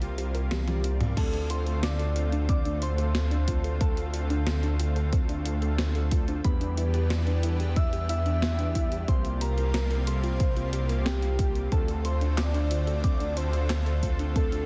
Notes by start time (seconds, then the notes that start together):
Already playing: C2 C3 G3 A#3 F4
0.02 C4 F4 G4 A#4 C5, closed hi-hat
0.18 C4 F4 G4 A#4 C5, closed hi-hat
0.35 A#4, closed hi-hat
0.51 G4, snare, closed hi-hat, high tom
0.68 C4 F4 G4 A#4 D5, snare, closed hi-hat, high tom
0.84 C4, closed hi-hat
1.00 F4, closed hi-hat, mid tom
1.17 D2 D3 A3 C4 D4 F4 A4 A5, kick, closed hi-hat, crash
1.33 D4, closed hi-hat
1.50 F4 C5 C6, closed hi-hat
1.66 A3 C4 D4 F4 A4, closed hi-hat
1.83 C5 D5 D6, snare, closed hi-hat
1.99 A4, closed hi-hat
2.16 A3 C4 D4 F4 C5, closed hi-hat
2.32 D4, closed hi-hat
2.49 C4 D5 D6, kick, closed hi-hat
2.65 A3 C4 D4 F4 A4, closed hi-hat
2.82 F4 C5 C6, closed hi-hat
2.98 A3 C4 D4 F4 A4, closed hi-hat
3.15 C4, snare, closed hi-hat
3.31 D4, closed hi-hat
3.48 A3 C4 D4 F4 A4, kick, closed hi-hat
3.64 A4, closed hi-hat
3.81 A3 C4 D4 F4 A4 C5 A5, kick, closed hi-hat
3.97 A4, closed hi-hat
4.14 F4, closed hi-hat
4.30 A3 C4 D4 F4 A4, closed hi-hat
4.47 C4, snare, closed hi-hat
4.63 D4, closed hi-hat
4.80 A3 C4 D4 F4 C5, closed hi-hat
4.96 A4, closed hi-hat
5.13 C4, kick, closed hi-hat
5.29 A3 C4 D4 F4 A4, closed hi-hat
5.46 F4, closed hi-hat
5.62 A3 C4 D4 F4 A4, closed hi-hat
5.78 C5, snare, closed hi-hat
5.95 A4, closed hi-hat
6.11 A3 C4 D4 F4 A4, kick, closed hi-hat
6.28 D4, closed hi-hat
6.44 E2 E3 G3 B3 D4 E4 G4 B4 B5, kick, closed hi-hat
6.61 D4, closed hi-hat
6.77 E4, closed hi-hat
6.94 G3 B3 D4 E4 G4, closed hi-hat
7.10 B3, snare, closed hi-hat
7.27 D4, closed hi-hat
7.43 G3 B3 D4 E4 A4, closed hi-hat
7.60 G4, closed hi-hat
7.76 B4 E5 E6, kick, closed hi-hat
7.93 G3 B3 D4 E4 G4, closed hi-hat
8.09 E4 E5 E6, closed hi-hat
8.26 G3 B3 D4 E4 G4, closed hi-hat
8.42 B3, snare, closed hi-hat
8.59 D4, closed hi-hat
8.75 G3 B3 D4 E4 G4, kick, closed hi-hat
8.92 G4, closed hi-hat
9.08 C2 C3 G3 A#3 C4 F4 G4 C5 C6, kick, closed hi-hat
9.25 F4, closed hi-hat
9.41 G4 A#4 A#5, closed hi-hat
9.58 G3 A#3 C4 F4 G4 A#4, closed hi-hat
9.74 A#4 C5 A#5, snare, closed hi-hat
9.91 A#4, closed hi-hat
10.07 G3 A#3 C4 F4 G4 A4 C5 C6, closed hi-hat
10.24 F4, closed hi-hat
10.40 C4, kick, closed hi-hat
10.56 G3 A#3 C4 F4 G4, closed hi-hat
10.73 G4, closed hi-hat
10.89 G3 A#3 C4 F4 G4 A#4, closed hi-hat
11.06 C4 G4 G5, snare, closed hi-hat
11.22 F4, closed hi-hat
11.39 G3 A#3 C4 F4 G4, kick, closed hi-hat
11.55 A#4, closed hi-hat
11.72 D2 D3 A3 C4 D4 F4 A4 C5 A5, kick, closed hi-hat
11.88 A4, closed hi-hat
12.05 F4 C5 C6, closed hi-hat
12.21 A3 C4 D4 F4 A4, closed hi-hat
12.38 C4 D5 D6, snare, clap, closed hi-hat
12.54 D4, closed hi-hat
12.71 A3 C4 D4 F4 C5, closed hi-hat
12.87 A4, closed hi-hat
13.04 C4 D5 D6, kick, closed hi-hat
13.20 A3 C4 D4 F4 A4, closed hi-hat
13.37 F4 C5 C6, closed hi-hat
13.53 A3 C4 D4 F4 A4, closed hi-hat
13.70 C5, snare, clap, closed hi-hat
13.86 A4, closed hi-hat
14.03 A3 C4 D4 F4 A4, kick, closed hi-hat
14.19 D4, closed hi-hat
14.36 A3 C4 D4 F4 A4 A5, kick, closed hi-hat
14.52 D4, closed hi-hat